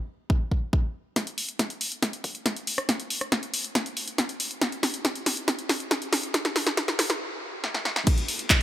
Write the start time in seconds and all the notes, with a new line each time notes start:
0.30 kick
0.52 kick
0.73 kick
1.16 kick, snare, closed hi-hat
1.27 closed hi-hat
1.38 open hi-hat
1.49 closed hi-hat
1.59 kick, snare, closed hi-hat
1.70 closed hi-hat
1.81 open hi-hat
1.92 closed hi-hat
2.02 kick, snare, closed hi-hat
2.13 closed hi-hat
2.24 kick, open hi-hat
2.35 closed hi-hat
2.46 kick, snare, closed hi-hat
2.56 closed hi-hat
2.67 open hi-hat
2.78 cross-stick, closed hi-hat
2.89 kick, snare, closed hi-hat
3.00 closed hi-hat
3.10 open hi-hat
3.21 cross-stick, closed hi-hat
3.32 kick, snare, closed hi-hat
3.43 closed hi-hat
3.54 open hi-hat
3.64 closed hi-hat
3.75 kick, snare, closed hi-hat
3.86 closed hi-hat
3.97 open hi-hat
4.08 closed hi-hat
4.18 kick, snare, closed hi-hat
4.29 closed hi-hat
4.40 open hi-hat
4.51 closed hi-hat
4.62 kick, snare, closed hi-hat
4.72 closed hi-hat
4.83 snare, open hi-hat
4.94 closed hi-hat
5.05 kick, snare, closed hi-hat
5.16 closed hi-hat
5.26 snare, open hi-hat
5.37 closed hi-hat
5.48 kick, snare, closed hi-hat
5.59 closed hi-hat
5.69 kick, snare, open hi-hat
5.80 closed hi-hat
5.91 kick, snare, closed hi-hat
6.02 closed hi-hat
6.13 snare, open hi-hat
6.23 closed hi-hat
6.34 kick, snare, closed hi-hat
6.45 snare, closed hi-hat
6.56 snare, open hi-hat
6.67 snare, closed hi-hat
6.77 kick, snare, closed hi-hat
6.88 snare, closed hi-hat
6.99 snare, open hi-hat
7.10 snare, closed hi-hat
7.64 snare
7.74 snare
7.85 snare
7.96 snare
8.07 kick, closed hi-hat, crash
8.18 closed hi-hat
8.28 open hi-hat
8.39 closed hi-hat
8.50 kick, clap, closed hi-hat